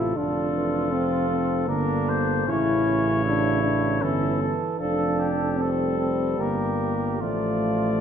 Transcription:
Already playing: tuba A1, trombone C3, trumpet E4 A4, french horn F4
0.16 tuba F1, trombone D3, french horn D4, trumpet F4 A4
0.55 trombone E3
0.92 trombone F3, french horn C4
1.29 french horn C4
1.67 tuba G1, trombone D3, french horn A#3, trumpet D4 A#4
2.09 trumpet C5
2.47 tuba A1, trombone C#3, trumpet C#4 C#5, french horn E4
2.85 trombone C#3
3.24 french horn D4, trumpet E4
3.63 french horn D4
4.02 tuba G1, trombone E3, french horn C#4, trumpet E4 A4
4.40 trombone E3, trumpet A4
4.79 tuba F1, trombone F3, french horn D4, trumpet A4
5.19 trumpet G4
5.57 trombone G3, french horn C4
5.61 trumpet A4
5.98 french horn C4
6.38 tuba G1, french horn A#3, trumpet G4 A#4
7.21 tuba A1, trombone F3, french horn A3, trumpet F4 D5

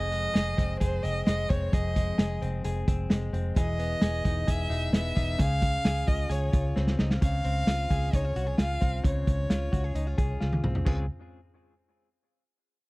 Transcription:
Already playing: fingered electric bass F1, clean electric guitar F2 G#3 C4 G#4, violin D#5
0.11 clean electric guitar G#3, closed hi-hat
0.34 fingered electric bass F1, clean electric guitar G#4, snare, closed hi-hat
0.57 fingered electric bass F1, clean electric guitar C4, kick, snare, closed hi-hat
0.80 fingered electric bass F1, clean electric guitar G#4, violin C5, kick, closed hi-hat
1.03 fingered electric bass F1, clean electric guitar C4, violin D#5, closed hi-hat
1.26 fingered electric bass F1, clean electric guitar G#3, violin D#5, snare, closed hi-hat
1.49 fingered electric bass F1, clean electric guitar C4, violin C#5, kick, closed hi-hat
1.72 fingered electric bass F1, clean electric guitar F2 G#4, violin D#5, kick, closed hi-hat
1.95 clean electric guitar G#3, kick, closed hi-hat
2.18 fingered electric bass F1, clean electric guitar G#4, snare, closed hi-hat
2.42 fingered electric bass F1, clean electric guitar C4, closed hi-hat
2.64 fingered electric bass F1, clean electric guitar G#4, closed hi-hat
2.88 fingered electric bass F1, clean electric guitar C4, kick, closed hi-hat
3.10 fingered electric bass F1, clean electric guitar G#3, snare, closed hi-hat
3.33 fingered electric bass F1, clean electric guitar C4, closed hi-hat
3.56 fingered electric bass E1, clean electric guitar E3 G#4, violin D#5, kick, closed hi-hat
3.79 clean electric guitar B3, closed hi-hat
4.02 fingered electric bass E1, clean electric guitar G#4, snare, closed hi-hat
4.24 fingered electric bass E1, clean electric guitar D#4, kick, snare, closed hi-hat
4.47 fingered electric bass E1, clean electric guitar G#4, violin E5, kick, closed hi-hat
4.70 fingered electric bass E1, clean electric guitar D#4, closed hi-hat
4.92 fingered electric bass E1, clean electric guitar B3, violin E5, snare, closed hi-hat
5.16 fingered electric bass E1, clean electric guitar D#4, kick, closed hi-hat
5.38 fingered electric bass C#2, clean electric guitar C#3 G#4, violin F5, kick, closed hi-hat
5.62 kick, closed hi-hat
5.85 fingered electric bass C#2, clean electric guitar G#4, snare, closed hi-hat
6.07 fingered electric bass C#2, clean electric guitar F4, violin D#5, kick, closed hi-hat
6.30 fingered electric bass C#2, clean electric guitar G#4, violin C#5, closed hi-hat
6.52 fingered electric bass C#2, clean electric guitar F4, kick, closed hi-hat
6.76 fingered electric bass C#2, clean electric guitar C4, snare
6.87 snare
6.99 fingered electric bass C#2, clean electric guitar D#4, snare
7.10 clean electric guitar F4, snare
7.21 fingered electric bass C#2, clean electric guitar C#3, violin F5, kick, closed hi-hat
7.44 fingered electric bass C#2, clean electric guitar C4, closed hi-hat
7.67 fingered electric bass C#2, clean electric guitar F4, snare, closed hi-hat
7.90 fingered electric bass C#2, clean electric guitar G#4, kick, closed hi-hat
8.13 fingered electric bass C#2, clean electric guitar D#4, violin C#5, kick, closed hi-hat
8.25 clean electric guitar F4
8.36 fingered electric bass C2, clean electric guitar F#4, closed hi-hat
8.47 clean electric guitar G#4
8.58 fingered electric bass C#2, clean electric guitar F4, violin F5, snare, closed hi-hat
8.81 fingered electric bass C2, clean electric guitar C4, kick, closed hi-hat
9.04 fingered electric bass C#2, clean electric guitar C#3, violin C#5, kick, closed hi-hat
9.27 fingered electric bass C#2, kick, closed hi-hat
9.50 fingered electric bass C#2, clean electric guitar F4, snare, closed hi-hat
9.72 fingered electric bass C#2, clean electric guitar F#4, kick, closed hi-hat
9.84 clean electric guitar G#4
9.95 fingered electric bass C#2, clean electric guitar D#4, closed hi-hat
10.07 clean electric guitar F4
10.18 fingered electric bass C2, clean electric guitar G#4, kick, closed hi-hat
10.40 fingered electric bass C#2, clean electric guitar F4, snare
10.52 high tom
10.63 fingered electric bass C2, clean electric guitar C4, mid tom
10.75 floor tom
10.85 fingered electric bass C#2, clean electric guitar C#3 G#3 C4 F4 G#4, kick, crash

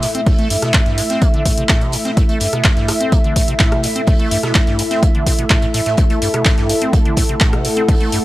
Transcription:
Already playing: analog synth pad A3 E4 E5, ambient pad E4 A4 E5
0.02 acid bass A2, snare, closed hi-hat, open hi-hat
0.15 acid bass C4, closed hi-hat
0.26 acid bass A2, kick, closed hi-hat, open hi-hat
0.39 acid bass A3, closed hi-hat
0.50 acid bass G2, closed hi-hat, open hi-hat
0.62 acid bass B2, cross-stick, snare, closed hi-hat
0.74 acid bass A2, kick, snare, clap, closed hi-hat
0.86 acid bass G2, snare, closed hi-hat
0.98 acid bass A2, closed hi-hat, open hi-hat
1.10 acid bass C4, snare, closed hi-hat
1.22 acid bass A3, kick, closed hi-hat
1.34 acid bass D3, closed hi-hat
1.45 acid bass A2, kick, closed hi-hat, open hi-hat
1.58 acid bass C3, closed hi-hat
1.69 acid bass A2, kick, snare, clap, closed hi-hat
1.81 acid bass C3, closed hi-hat
1.92 acid bass A2, closed hi-hat, open hi-hat
2.05 acid bass C4, snare, closed hi-hat
2.17 acid bass A2, kick, closed hi-hat
2.29 acid bass A3, closed hi-hat
2.40 acid bass G2, closed hi-hat, open hi-hat
2.53 acid bass B2, cross-stick, closed hi-hat
2.64 acid bass A2, kick, snare, clap, closed hi-hat
2.76 acid bass G2, snare, closed hi-hat
2.88 acid bass A2, cross-stick, snare, closed hi-hat, open hi-hat
3.00 acid bass C4, closed hi-hat
3.12 acid bass A3, kick, closed hi-hat
3.24 acid bass D3, closed hi-hat
3.36 acid bass A2, kick, closed hi-hat, open hi-hat
3.48 acid bass C3, closed hi-hat
3.59 acid bass A2, kick, snare, clap, closed hi-hat
3.72 acid bass C3, cross-stick, closed hi-hat
3.83 acid bass A2, snare, closed hi-hat, open hi-hat
3.96 acid bass C4, closed hi-hat
4.07 acid bass A2, kick, closed hi-hat, open hi-hat
4.19 acid bass A3, closed hi-hat
4.31 acid bass G2, closed hi-hat, open hi-hat
4.43 acid bass B2, cross-stick, snare, closed hi-hat
4.55 kick, snare, clap, closed hi-hat
4.67 acid bass G2, snare, closed hi-hat
4.79 acid bass A2, closed hi-hat, open hi-hat
4.90 acid bass C4, snare, closed hi-hat
5.03 acid bass A3, kick, closed hi-hat
5.15 acid bass D3, closed hi-hat
5.26 acid bass C3, kick, closed hi-hat, open hi-hat
5.39 acid bass B2, closed hi-hat
5.50 acid bass A2, kick, snare, clap, closed hi-hat
5.62 acid bass A2, closed hi-hat
5.74 acid bass A2, closed hi-hat, open hi-hat
5.86 acid bass A2, snare, closed hi-hat
5.97 analog synth pad A4, kick, closed hi-hat
6.10 acid bass A3, closed hi-hat
6.22 acid bass G2, closed hi-hat, open hi-hat
6.34 acid bass B2, cross-stick, closed hi-hat
6.45 acid bass A2, kick, snare, clap, closed hi-hat
6.57 acid bass G2, snare, closed hi-hat
6.69 acid bass A2, closed hi-hat, open hi-hat
6.82 acid bass C4, closed hi-hat
6.93 acid bass A3, kick, closed hi-hat
7.05 acid bass D3, closed hi-hat
7.11 ambient pad F#5
7.17 acid bass A2, kick, closed hi-hat, open hi-hat
7.29 acid bass C3, closed hi-hat
7.40 acid bass A2, kick, snare, clap, closed hi-hat
7.53 acid bass C3, cross-stick, closed hi-hat
7.65 acid bass A2, snare, closed hi-hat, open hi-hat
7.77 acid bass C4, closed hi-hat
7.89 acid bass A2, kick, closed hi-hat, open hi-hat
8.01 acid bass A3, closed hi-hat
8.12 acid bass G2, closed hi-hat, open hi-hat

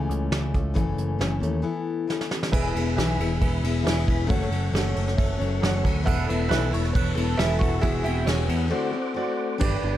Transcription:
Already playing: steel-string acoustic guitar C#3 E3 A3 C#4 A4
0.09 picked electric bass C#2, closed hi-hat
0.31 picked electric bass C#2, steel-string acoustic guitar E3 A3 C#4, snare, closed hi-hat
0.35 steel-string acoustic guitar A4
0.54 picked electric bass C#2, steel-string acoustic guitar A3 C#4 A4, kick, closed hi-hat
0.74 picked electric bass F#1, steel-string acoustic guitar F#2 C#3 E3 A3 C#4 A4, kick, closed hi-hat
0.97 picked electric bass F#1, closed hi-hat
1.19 picked electric bass F#1, steel-string acoustic guitar E3 A3 C#4 A4, snare, closed hi-hat
1.40 picked electric bass D#2, steel-string acoustic guitar E3 A3 C#4 A4, closed hi-hat
1.62 steel-string acoustic guitar E3 B3 E4 A4
2.07 steel-string acoustic guitar E3 B3 E4 A4, snare
2.21 snare
2.31 snare
2.43 snare
2.52 picked electric bass E1, steel-string acoustic guitar E3 B3 E4 G#4, tonewheel organ G#4 E5 B5, grand piano B4 E5 G#5, kick, crash
2.75 picked electric bass E1, steel-string acoustic guitar B3 E4 G#4, ride
2.96 picked electric bass B1, steel-string acoustic guitar E3 B3 E4 G#4, grand piano B4 E5 G#5, snare, ride
3.18 picked electric bass E1, steel-string acoustic guitar B3 E4 G#4, ride
3.41 picked electric bass E1, grand piano B4 E5 G#5, kick, ride
3.62 picked electric bass E1, steel-string acoustic guitar B3 E4 G#4, ride
3.83 picked electric bass E1, steel-string acoustic guitar E3 B3 E4 G#4, grand piano B4 E5 G#5, snare, ride
4.08 picked electric bass E1, kick, ride
4.27 picked electric bass F#1, steel-string acoustic guitar F#2 C#3 F#3 A3 C#4 A4, tonewheel organ A4 F#5 C#6, grand piano A4 C#5 F#5, kick, ride
4.42 snare
4.50 picked electric bass F#1, steel-string acoustic guitar F#3 A3 C#4 A4, ride
4.72 picked electric bass F#1, steel-string acoustic guitar F#3 A3 C#4 A4, grand piano A4 C#5 F#5, snare, ride
4.94 picked electric bass F#1, steel-string acoustic guitar F#3 A3 C#4 A4, ride
5.08 snare
5.17 picked electric bass F#1, grand piano A4 C#5 E5, kick, ride
5.38 picked electric bass F#1, steel-string acoustic guitar F#3 A3 C#4 A4, ride
5.60 picked electric bass F#1, steel-string acoustic guitar F#3 A3 C#4 A4, grand piano A4 C#5 F#5, snare, ride
5.84 picked electric bass D2, kick, ride
6.03 steel-string acoustic guitar E3 B3 E4 A4, grand piano A4 B4 E5, tonewheel organ B4 A5, mandolin F#5, kick
6.07 picked electric bass E1, tonewheel organ E6, crash
6.27 picked electric bass E1, steel-string acoustic guitar B3 E4 A4, mandolin E5, ride
6.48 picked electric bass B1, steel-string acoustic guitar E3 B3 E4 A4, grand piano A4 B4 E5, mandolin B4, snare, ride
6.71 picked electric bass E1, steel-string acoustic guitar B3 E4 A4, mandolin C#5, ride
6.85 snare
6.93 picked electric bass E1, grand piano A4 B4 C#5, mandolin B4, kick, ride
7.15 picked electric bass E1, steel-string acoustic guitar B3 E4 A4, mandolin A4, ride
7.37 picked electric bass E1, steel-string acoustic guitar E3 B3 E4 A4, mandolin E4, grand piano A4 B4 E5, snare, ride
7.59 picked electric bass E1, mandolin F#4, kick, ride
7.81 picked electric bass E1, steel-string acoustic guitar E3 G#3 B3 E4 F#4, mandolin E4, grand piano F#4 G#4 E5, tonewheel organ G#4 F#5 E6, kick, ride
8.04 picked electric bass E1, steel-string acoustic guitar B3 E4 F#4, mandolin C4 E4, ride
8.25 picked electric bass E1, steel-string acoustic guitar G#3 B3 E4 F#4, grand piano F#4 G#4 C#5, snare, ride
8.46 picked electric bass E2, steel-string acoustic guitar B3 E4 F#4, ride
8.68 steel-string acoustic guitar D3 A3 C4 F#4 A4, grand piano F#4 C5 D5, tonewheel organ C5 D6
8.91 steel-string acoustic guitar C4 F#4 A4
9.14 steel-string acoustic guitar A3 C4 F#4 A4, grand piano F#4 C5 D5
9.57 picked electric bass G1, steel-string acoustic guitar G3 D4 G4 B4, grand piano D4 G4 B4 D5, tonewheel organ B4 G5, kick, crash
9.82 picked electric bass G1, steel-string acoustic guitar D4 G4 B4

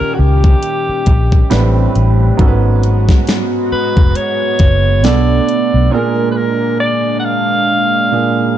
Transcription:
Already playing: analog synth pad A#2 D#3 C#4 G4 F5, grand piano D#3 A#3 C#4 G4, alto saxophone A#4
0.01 muted fingered electric bass stroke
0.14 alto saxophone F#4
0.19 fingered electric bass C#2, alto saxophone G4
0.44 kick
0.63 closed hi-hat
0.89 muted fingered electric bass stroke
1.06 fingered electric bass A#1, kick, closed hi-hat
1.32 kick
1.50 fingered electric bass A1, grand piano A2 G3 B3 D4 B4, analog synth pad A3 C4, snare, closed hi-hat
1.58 grand piano C4
1.96 fingered electric bass A1, closed hi-hat
2.37 fingered electric bass G#1, grand piano G#2 F#3 B3 C#4 A4, analog synth pad G#3 B3 F#4, kick, closed hi-hat
2.48 grand piano B4
2.83 closed hi-hat
3.09 kick, snare
3.27 snare, closed hi-hat
3.72 alto saxophone B4, muted fingered electric bass stroke
3.97 fingered electric bass F1, kick
4.15 alto saxophone C#5, closed hi-hat
4.59 fingered electric bass F#1, kick, closed hi-hat
5.03 fingered electric bass B1, grand piano B2 B3 D4 A4, analog synth pad A3 D4, alto saxophone D5, snare, closed hi-hat
5.49 closed hi-hat
5.74 fingered electric bass B1
5.90 grand piano A#2 A#3 D4, analog synth pad G#3 A#3 D4, alto saxophone A#4
5.94 grand piano G#4
6.31 alto saxophone B4
6.37 alto saxophone A#4
6.80 alto saxophone D5
7.19 alto saxophone F#5
7.25 alto saxophone F5
8.11 grand piano A#2 A#3 D4 G#4

